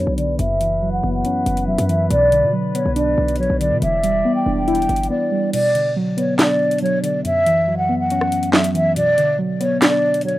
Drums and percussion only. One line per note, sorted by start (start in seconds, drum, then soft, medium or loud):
0.18 closed hi-hat medium
0.39 closed hi-hat medium
0.61 closed hi-hat medium
1.25 closed hi-hat medium
1.46 closed hi-hat medium
1.57 closed hi-hat medium
1.78 closed hi-hat medium
1.89 closed hi-hat medium
2.11 closed hi-hat medium
2.32 closed hi-hat medium
2.75 closed hi-hat medium
2.96 closed hi-hat medium
3.28 closed hi-hat medium
3.36 closed hi-hat medium
3.43 closed hi-hat soft
3.61 closed hi-hat medium
3.82 closed hi-hat medium
4.04 closed hi-hat medium
4.68 closed hi-hat soft
4.75 closed hi-hat medium
4.82 closed hi-hat medium
4.89 closed hi-hat medium
4.96 closed hi-hat medium
5.03 closed hi-hat medium
5.53 closed hi-hat medium
5.53 crash loud
5.75 closed hi-hat medium
6.18 closed hi-hat medium
6.39 snare loud
6.39 clap medium
6.39 closed hi-hat medium
6.71 closed hi-hat medium
6.78 closed hi-hat medium
6.86 closed hi-hat soft
7.04 closed hi-hat medium
7.25 closed hi-hat medium
7.46 closed hi-hat medium
8.10 closed hi-hat medium
8.21 cross-stick loud
8.32 closed hi-hat medium
8.43 closed hi-hat medium
8.53 snare loud
8.53 clap loud
8.64 closed hi-hat medium
8.75 closed hi-hat medium
8.96 closed hi-hat medium
9.18 closed hi-hat medium
9.61 closed hi-hat medium
9.82 snare loud
9.82 clap medium
9.82 closed hi-hat medium
10.14 closed hi-hat medium
10.21 closed hi-hat medium
10.28 closed hi-hat soft